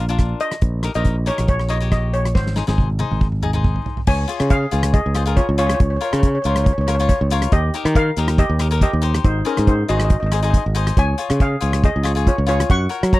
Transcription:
Already playing: A#1
0.09 D4 F4 A#4, closed hi-hat
0.19 kick, cross-stick, closed hi-hat
0.40 D#5, closed hi-hat
0.52 cross-stick, closed hi-hat
0.62 A#1, kick, closed hi-hat
0.83 D#4 G4 A#4, cross-stick, closed hi-hat
0.94 A#1 D#4 G4 A#4 D#5, closed hi-hat
1.05 kick, closed hi-hat
1.26 D#4 G4 A#4 C#5, closed hi-hat
1.38 A#1, cross-stick, closed hi-hat
1.48 C#5, kick, closed hi-hat
1.60 cross-stick
1.69 D#4 G4 C#5 D#5, closed hi-hat
1.80 D#4 G4 C#5, closed hi-hat
1.92 D#5, kick, cross-stick, closed hi-hat
2.14 C#5, closed hi-hat
2.25 cross-stick, closed hi-hat
2.35 G#1 C5, kick, snare
2.47 snare
2.56 D#4 G#4 C5, snare
2.67 G#1 D#4 G#4 C5, snare
2.78 kick, high tom
2.90 high tom
2.99 D#4 G#4 C5, high tom
3.11 G#1, mid tom
3.21 kick, mid tom
3.32 mid tom
3.43 D#4 G#4 D#5, mid tom
3.53 D#4 G#4 C5, mid tom
3.64 kick, mid tom
3.76 floor tom
3.86 floor tom
3.97 floor tom
4.07 C#2 C#5 G#5, kick, crash
4.28 F4 G#4 C#5, closed hi-hat
4.40 C#3, cross-stick, closed hi-hat
4.50 G#4 F5, kick, closed hi-hat
4.71 C#2 F4 G#4 C#5, closed hi-hat
4.83 cross-stick, closed hi-hat
4.94 G#4 D#5, kick, closed hi-hat
5.06 C#2
5.14 F4 G#4 C5, cross-stick, closed hi-hat
5.26 F4 G#4 A#4, closed hi-hat
5.37 F4 C#5, kick, closed hi-hat
5.49 C#2
5.58 F4 G#4 C#5, closed hi-hat
5.67 C#5, cross-stick, closed hi-hat
5.74 C#5
5.80 C#2 C#5, kick, closed hi-hat
5.90 C#5
5.96 C#5
6.01 F4 A#4 C#5, closed hi-hat
6.05 C#5
6.13 C#3 C#5, cross-stick, closed hi-hat
6.19 C#5, kick, closed hi-hat
6.27 C#5
6.35 C#5
6.42 C#2 F4 A#4 C#5, closed hi-hat
6.46 C5 C#5
6.56 C#5, cross-stick, closed hi-hat
6.64 C#5, kick, closed hi-hat
6.73 C#5
6.78 C#2 C#5
6.87 F4 A#4 C#5, cross-stick, closed hi-hat
6.95 C#5
6.99 F4 A#4 C#5, closed hi-hat
7.09 C#5, kick, closed hi-hat
7.21 C#2
7.30 F4 A#4 C#5, closed hi-hat
7.42 cross-stick, closed hi-hat
7.52 D#2 G4 D#5, kick, closed hi-hat
7.74 D#4 G4 A#4, closed hi-hat
7.85 D#3, cross-stick, closed hi-hat
7.95 A#4 F5, kick, closed hi-hat
8.17 D#2 D#4 G4 A#4, closed hi-hat
8.28 cross-stick, closed hi-hat
8.38 G4 D#5, kick, closed hi-hat
8.49 D#2
8.59 D#4 G4 A#4, cross-stick, closed hi-hat
8.71 D#4 G4 A#4, closed hi-hat
8.81 G4 D#5, kick, closed hi-hat
8.93 D#2
9.02 D#4 G4 C5, closed hi-hat
9.14 cross-stick, closed hi-hat
9.24 G#1 D#4 C5, kick, closed hi-hat
9.45 C#4 D#4 G#4 A#4 C5, closed hi-hat
9.57 G#2, cross-stick, closed hi-hat
9.67 D#4 C5, kick, closed hi-hat
9.88 G#1 D#4 F#4 G#4 C5 D#5, closed hi-hat
9.97 D#5, cross-stick, closed hi-hat
10.05 D#5
10.10 D#5, kick, closed hi-hat
10.20 G#1 D#5
10.26 D#5
10.31 D#4 G#4 C5 D#5, cross-stick, closed hi-hat
10.43 D#4 G#4 C5 D#5, closed hi-hat
10.50 D#5, kick, closed hi-hat
10.58 D#5
10.66 G#1
10.75 D#4 G#4 C5, closed hi-hat
10.87 cross-stick, closed hi-hat
10.97 C#2 C#5 G#5, kick, closed hi-hat
11.18 F4 G#4 C#5, closed hi-hat
11.30 C#3, cross-stick, closed hi-hat
11.40 G#4 F5, kick, closed hi-hat
11.61 C#2 F4 G#4 C#5, closed hi-hat
11.73 cross-stick, closed hi-hat
11.84 G#4 D#5, kick, closed hi-hat
11.96 C#2
12.03 F4 G#4 C#5, cross-stick, closed hi-hat
12.15 F4 G#4 C#5, closed hi-hat
12.27 F4 C#5, kick, closed hi-hat
12.38 C#2
12.46 F4 G#4 C#5, closed hi-hat
12.60 cross-stick, closed hi-hat
12.70 F#2 F#5 C#6, kick, closed hi-hat
12.89 F#4 A#4 C#5, closed hi-hat
13.03 F#3, cross-stick, closed hi-hat
13.13 C#5 A#5, kick, closed hi-hat

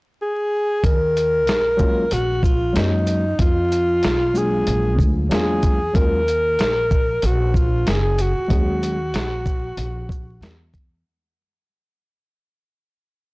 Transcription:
0.22 G#4
0.84 D#2 A#4, kick, closed hi-hat
1.17 closed hi-hat, shaker
1.47 A#1, snare, closed hi-hat
1.77 F#3 G#3 A#3 C#4 F4, kick, shaker
2.11 A#1 F#4, closed hi-hat
2.43 F4, kick, shaker
2.73 F#2 F#3 G#3 A#3 C#4 F#4, snare, closed hi-hat
2.77 D#4
3.07 closed hi-hat, shaker
3.39 F2 F4, kick, closed hi-hat
3.72 closed hi-hat, shaker
4.03 B1, snare, closed hi-hat
4.34 F#3 G#3 A#3 D4 F4, shaker
4.38 G#4
4.67 A#1, closed hi-hat
4.99 D2, kick, shaker
5.29 E2 F#3 G#3 A#3 D4 F4, snare, closed hi-hat
5.33 G#4
5.63 kick, closed hi-hat, shaker
5.94 D#2 F#3 G#3 A#3 C#4 F4 A#4, kick, closed hi-hat
6.28 closed hi-hat, shaker
6.59 A#1, snare, closed hi-hat
6.91 kick, shaker
7.22 A#1 F#4, closed hi-hat
7.54 F4, kick, shaker
7.86 F#1 G#4, snare, closed hi-hat
8.18 F#4, closed hi-hat, shaker
8.39 muted upright bass stroke
8.48 D#2 F#3 G#3 A#3 C#4 G#4, kick, closed hi-hat
8.83 closed hi-hat, shaker
9.14 A#1, snare, closed hi-hat
9.46 kick, shaker
9.77 A#1, closed hi-hat
10.09 kick, shaker
10.41 E2, snare, closed hi-hat
10.74 kick, closed hi-hat, shaker

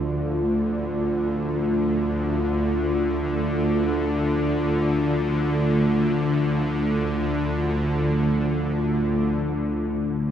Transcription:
Already playing: D2 D3 A3 F4 D5
9.46 D2 D3 A3

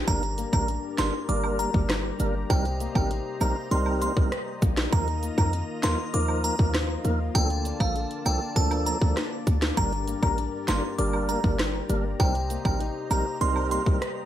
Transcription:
Already playing: D3 A3 D4 G4
0.07 G1 G2 G3 A#3 D4 G4 A#4 D5 A#5, kick, closed hi-hat, high woodblock
0.23 closed hi-hat
0.38 A#3, closed hi-hat, cabasa
0.53 A1 G3 A#3 D4 A#4 A#5, kick, high woodblock
0.68 D4, closed hi-hat
0.98 G1 G3 A#3 D4 A#4 C6, cross-stick, snare, closed hi-hat, cabasa, high woodblock
1.29 G1 G3 A#3 D4 A#4 D6, closed hi-hat
1.44 high woodblock
1.59 A#3 A#5, closed hi-hat, cabasa
1.74 G1 G3 A#3 D4 A#4, kick
1.90 G3, cross-stick, snare, closed hi-hat
2.20 G1 G3 A#3 D4 A#4, closed hi-hat, cabasa
2.50 C2 C3 G3 C4 D#4 A#4 C5 D#5 G5, kick, closed hi-hat, high woodblock
2.65 closed hi-hat
2.80 A#3, closed hi-hat, cabasa
2.95 A1 G3 C4 D#4 A#4 G5, kick, high woodblock
3.11 D#4, closed hi-hat
3.41 A#1 G3 A#3 C4 D#4 A#4 A#5, closed hi-hat, cabasa, high woodblock
3.71 C2 G3 C4 D#4 A#4 C6, closed hi-hat
3.86 high woodblock
4.02 A#3 C6, closed hi-hat, cabasa
4.17 C2 G3 C4 D#4 A#4, kick
4.32 G3, cross-stick, closed hi-hat
4.62 A#1 A#3, kick, closed hi-hat, cabasa
4.77 cross-stick, snare
4.92 D#2 D#3 F3 A#3 D#4 F4 A#4 A#5, kick, closed hi-hat, high woodblock
5.08 closed hi-hat
5.23 A#3, closed hi-hat, cabasa
5.38 F2 F3 A#3 D#4 A#4 A#5, kick, high woodblock
5.53 D#4, closed hi-hat
5.83 D#2 F3 A#3 D#4 A#4 C6, cross-stick, snare, closed hi-hat, cabasa, high woodblock
6.13 D#2 F3 A#3 D#4 A#4 D6, closed hi-hat
6.28 high woodblock
6.44 A#3 A#5, closed hi-hat, cabasa
6.59 D#2 F3 A#3 D#4 A#4, kick
6.74 F3, cross-stick, snare, closed hi-hat
7.04 D#2 F3 A#3 D#4 A#4, closed hi-hat, cabasa
7.35 D2 D3 F3 A#3 D4 A4 D5 G5 A5, kick, closed hi-hat, high woodblock
7.50 closed hi-hat
7.65 D4, closed hi-hat, cabasa
7.80 A#1 F3 A#3 D4 A4 F5, kick, high woodblock
7.96 A4, closed hi-hat
8.11 closed hi-hat
8.26 C2 F3 A#3 D4 A4 G5, closed hi-hat, cabasa, high woodblock
8.56 D2 F3 A#3 D4 A4 A5, kick, closed hi-hat
8.71 closed hi-hat, high woodblock
8.86 D4 A#5, closed hi-hat, cabasa
9.01 D2 F3 A#3 D4 A4, kick
9.17 A#3, cross-stick, snare, closed hi-hat
9.47 D2 D4, kick, closed hi-hat, cabasa
9.62 cross-stick, snare
9.77 G1 G2 G3 A#3 D4 G4 A#4 A#5, kick, closed hi-hat, high woodblock
9.93 closed hi-hat
10.08 A#3, closed hi-hat, cabasa
10.23 A1 G3 A#3 D4 A#4 A#5, kick, high woodblock
10.38 D4, closed hi-hat
10.68 G1 G3 A#3 D4 A#4 C6, cross-stick, snare, closed hi-hat, cabasa, high woodblock
10.98 G1 G3 A#3 D4 A#4 D6, closed hi-hat
11.13 high woodblock
11.29 A#3 A#5, closed hi-hat, cabasa
11.44 G1 G3 A#3 D4 A#4, kick
11.59 G3, cross-stick, snare, closed hi-hat
11.89 G1 G3 A#3 D4 A#4, closed hi-hat, cabasa
12.20 C2 C3 G3 C4 D#4 G4 A#4 C5 D#5 G5, kick, closed hi-hat, high woodblock
12.35 closed hi-hat
12.50 A#3, closed hi-hat, cabasa
12.65 A1 G3 C4 D#4 A#4 G5, kick, high woodblock
12.80 D#4, closed hi-hat
13.10 A#1 G3 A#3 C4 D#4 A#4 A#5, closed hi-hat, cabasa, high woodblock
13.41 C2 G3 C4 D#4 A#4 C6, closed hi-hat
13.56 high woodblock
13.71 A#3 C6, closed hi-hat, cabasa
13.86 C2 G3 C4 D#4 A#4, kick
14.02 G3, cross-stick, closed hi-hat

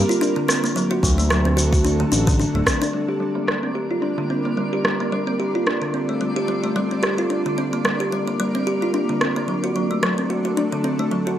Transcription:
Already playing: G3 A#3 A#4
0.09 F4, shaker
0.21 D4, shaker
0.36 D3
0.48 C4, cross-stick, shaker
0.64 A#3, shaker
0.76 F#3 A3 D4 A4, shaker
0.91 F#4
1.03 D2 F#3, kick, shaker
1.18 A3, shaker
1.30 F#3, cross-stick, shaker
1.45 C4
1.57 F#4, shaker
1.73 F#4, kick, shaker
1.85 D4, shaker
2.00 D3
2.12 A1 D4, shaker
2.27 D3, kick, shaker
2.40 D4, shaker
2.54 D1 A3
2.66 C4, kick, cross-stick, shaker
2.82 D4, shaker
2.93 G3 A#3 D4 A#4 D5
3.08 G4
3.20 G3
3.35 A#3
3.48 G3, cross-stick
3.63 C4
3.75 G4
3.91 F4
4.02 D4
4.18 D3
4.30 C4
4.45 A#3
4.57 G3
4.73 G4
4.85 G3, cross-stick
5.00 A#3
5.12 G3 C4 F4 A4
5.27 C4
5.40 G4
5.55 F4
5.67 D4, cross-stick
5.82 D3
5.94 C4
6.09 A3
6.21 G3
6.36 G4
6.48 G3
6.64 A3
6.76 G3
6.91 C4
7.03 G4, cross-stick
7.18 F4
7.30 G3 A#3 D4 A#4
7.46 D3
7.58 C4
7.73 A#3
7.85 G3, cross-stick
8.00 G4
8.12 G3
8.28 A#3
8.40 G3
8.55 C4
8.67 G4
8.82 F4
8.94 D4
9.09 D3
9.21 C4, cross-stick
9.36 A#3
9.48 F#3 A3 D4 A4
9.64 F#4
9.76 F#3
9.91 A3
10.03 F#3, cross-stick
10.18 C4
10.30 F#4
10.45 F#4
10.57 D4
10.72 D3
10.84 C4
10.99 A3
11.11 F#3
11.27 F#4

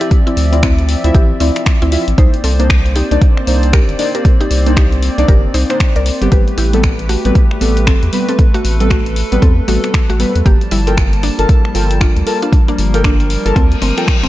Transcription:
Already playing: F3 C4 D5 E5
0.01 E4 G4, closed hi-hat
0.11 kick, closed hi-hat
0.27 C4 E4, closed hi-hat
0.37 D2, open hi-hat
0.52 C4 E4 F4 D5, closed hi-hat
0.63 C4 E4, finger snap, kick, closed hi-hat
0.79 closed hi-hat
0.89 open hi-hat
1.04 D2 C4 E4 F4 E5, closed hi-hat
1.15 A1 E4 G4, kick, closed hi-hat
1.40 D2 C4 E4 F4 D5, open hi-hat
1.56 finger snap, closed hi-hat
1.66 finger snap, kick, closed hi-hat
1.82 D2 C4 E4, closed hi-hat
1.92 C4 E4 F4 E5, open hi-hat
2.08 A1, closed hi-hat
2.18 C2 A#3 C4 D#4 C5 D5, kick, closed hi-hat
2.34 closed hi-hat
2.44 C2 C4 A4, open hi-hat
2.59 A#3 D4 D#4 C5, closed hi-hat
2.70 finger snap, kick, closed hi-hat
2.86 closed hi-hat
2.96 D#4 G4, open hi-hat
3.11 C2 A#3 D4 D#4 D5, closed hi-hat
3.22 kick, closed hi-hat
3.37 finger snap
3.47 C2 A#3 D4 D#4 C5, open hi-hat
3.63 closed hi-hat
3.73 G4 A#4, finger snap, kick, closed hi-hat
3.89 G1, closed hi-hat
3.99 A#3 D4 D#4 D5, open hi-hat
4.15 G4 A#4, closed hi-hat
4.25 kick, closed hi-hat
4.41 D#4 G4, closed hi-hat
4.51 C2, open hi-hat
4.66 A#3 D4 D#4 C5, closed hi-hat
4.77 D#4 G4, finger snap, kick, closed hi-hat
4.92 closed hi-hat
5.03 open hi-hat
5.18 C2 A#3 D4 D#4 D5, closed hi-hat
5.28 G1 G4 A#4, kick, closed hi-hat
5.54 C2 D#4 C5, open hi-hat
5.69 A#3 D4 D#4 C5, finger snap, closed hi-hat
5.80 finger snap, kick, closed hi-hat
5.96 C2 A#4 D5, closed hi-hat
6.06 open hi-hat
6.21 G1 G3 B3 C4 G4, closed hi-hat
6.32 A1 A3 G4 B4, kick, closed hi-hat
6.48 closed hi-hat
6.58 A1 E4 G4, open hi-hat
6.73 G3 B3 C4 A4, closed hi-hat
6.83 finger snap, kick, closed hi-hat
6.99 closed hi-hat
7.09 A3 F#4, open hi-hat
7.25 A1 G3 B3 C4 B4, closed hi-hat
7.35 kick, closed hi-hat
7.51 finger snap
7.61 A1 G3 B3 C4 A4, open hi-hat
7.77 closed hi-hat
7.87 C4 A4, finger snap, kick, closed hi-hat
8.03 E2, closed hi-hat
8.12 G3 B3 C4 B4, open hi-hat
8.29 C4 A4, closed hi-hat
8.39 A4, kick, closed hi-hat
8.54 A3 F#4, closed hi-hat
8.65 A1, open hi-hat
8.80 G3 B3 C4 A4, closed hi-hat
8.90 A3 F#4, finger snap, kick, closed hi-hat
9.06 closed hi-hat
9.16 open hi-hat
9.32 A1 G3 B3 C4 B4, closed hi-hat
9.42 E2 C4 A4, kick, closed hi-hat
9.68 A1 G3 A3 B3 C4 F#4 A4, open hi-hat
9.84 finger snap, closed hi-hat
9.94 finger snap, kick, closed hi-hat
10.10 A1 A3 F#4, closed hi-hat
10.20 G3 B3 C4 B4, open hi-hat
10.36 E2, closed hi-hat
10.46 G1 F3 G3 A#3 G4 A5, kick, closed hi-hat
10.61 closed hi-hat
10.71 G1 G3 E4, open hi-hat
10.87 F4 A4 A#4 G5, closed hi-hat
10.97 finger snap, kick, closed hi-hat
11.13 closed hi-hat
11.23 A#3 D4, open hi-hat
11.38 G1 F4 A4 A#4 A5, closed hi-hat
11.49 kick, closed hi-hat
11.65 finger snap
11.74 G1 F4 A4 A#4 G5, open hi-hat
11.91 closed hi-hat
12.01 D4 F4, finger snap, kick, closed hi-hat
12.16 D2, closed hi-hat
12.26 F4 A4 A#4 A5, open hi-hat
12.42 D4 F4, closed hi-hat
12.52 A#4, kick, closed hi-hat
12.68 A#3 D4, closed hi-hat
12.78 G1, open hi-hat
12.94 F4 A4 A#4 G5, closed hi-hat
13.04 A#3 D4, finger snap, kick, closed hi-hat
13.20 closed hi-hat
13.30 open hi-hat
13.45 G1 F4 A4 A#4 A5, closed hi-hat
13.56 D2 A3 C4, kick, closed hi-hat, reverse cymbal
13.72 closed hi-hat
13.82 G1 A3 C4, open hi-hat
13.97 F4 A4 A#4 G5, finger snap, closed hi-hat
14.08 finger snap, kick, closed hi-hat
14.23 F1 A3 C4, closed hi-hat

